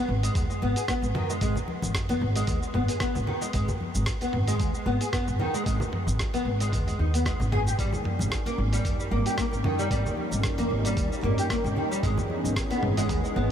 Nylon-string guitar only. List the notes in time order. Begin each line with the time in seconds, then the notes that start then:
0.23 G#3
0.50 G#3
0.62 B3
0.77 G#4
0.89 B3
1.15 D#3
1.30 G#3
1.42 G#3
2.09 B3
2.36 G#3
2.62 G#3
2.74 B3
2.89 G#4
3.01 B3
3.27 D#3
3.42 G#3
3.54 G#3
4.21 B3
4.48 G#3
4.74 G#3
4.86 B3
5.01 G#4
5.13 B3
5.40 D#3
5.54 G#3
5.66 G#3
6.34 B3
6.61 G#3
6.87 G#3
6.99 D#4
7.14 B3
7.26 G#3
7.52 G#4
7.67 G4
7.79 G3
8.46 A#3
8.73 G3
9.00 G3
9.11 A#3
9.26 G4
9.38 A#3
9.65 D#3
9.79 G3
9.91 G3
10.58 A#3
10.85 G3
11.12 G3
11.24 A#3
11.39 G4
11.50 A#3
11.77 D#3
11.91 G3
12.03 G#3
12.71 B3
12.97 G#3
13.24 G#3
13.36 B3